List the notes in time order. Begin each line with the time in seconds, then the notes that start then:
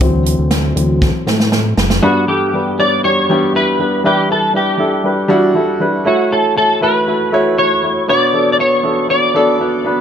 0.00 D2 E3 F#3 C4, kick, closed hi-hat
0.26 closed hi-hat
0.39 D2
0.51 snare, closed hi-hat
0.76 D2 E3 F#3 C4, closed hi-hat
1.02 kick, snare
1.27 A2, snare
1.40 snare
1.52 snare
1.77 F#1, snare
1.90 snare
2.02 G2 G3 B3 D4 F#4 B4
2.27 G3 B3 D4 G4 A4
2.53 G3 B3 D4 B4
2.79 G3 B3 D4 C#5 D5
3.04 G3 B3 D4 G4 C#5
3.29 G3 B3 D4 G4
3.54 G3 B3 D4 E4 B4
3.79 G3 B3 D4 B4
4.04 E3 G3 D4 E4 G4 B4
4.29 G3 D4 E4 A4 B4
4.53 G3 D4 E4 G4 B4
4.78 G3 D4 E4 A4
5.04 G3 D4 E4 B4
5.28 G3 D4 E4 F#4
5.54 G3 D4 E4 A4
5.80 G3 D4 E4 B4
6.05 A3 E4 F#4 C#5
6.31 A3 E4 F#4 A4 C#5
6.55 A3 E4 F#4 A4 C#5
6.81 A3 E4 F#4 B4
7.06 A3 E4 F#4 A4
7.32 A3 E4 F#4 C#5
7.58 A3 E4 F#4 C#5
7.83 A3 E4 F#4 C#5
8.08 B2 B3 D4 F#4 C#5 D5
8.33 B3 D4 F#4 A4
8.52 D5
8.58 B3 D4 F#4 C#5
8.83 B3 D4 F#4 A4
9.09 B3 D4 F#4 C#5 D5
9.34 B3 D4 F#4 A4
9.59 B3 D4 F#4 B4
9.84 B3 D4 F#4 B4